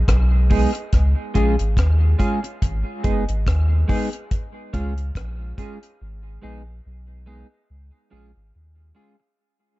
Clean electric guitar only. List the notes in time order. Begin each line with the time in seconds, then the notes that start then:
0.50 G#3 B3 D#4 G#4
1.34 G#3 C#4 F4 G#4
2.19 G#3 C#4 F4 G#4
2.43 muted clean electric guitar stroke
3.04 G#3 B3 D#4 G#4
3.88 G#3 B3 D#4 G#4
4.73 G#3 C#4 F4 G#4
5.58 G#3 C#4 F4 G#4
6.42 G#3 B3 D#4 G#4
7.26 G#3 B3 D#4 G#4
8.11 G#3 C#4 F4 G#4
8.95 G#3 C#4 F4 G#4
9.20 muted clean electric guitar stroke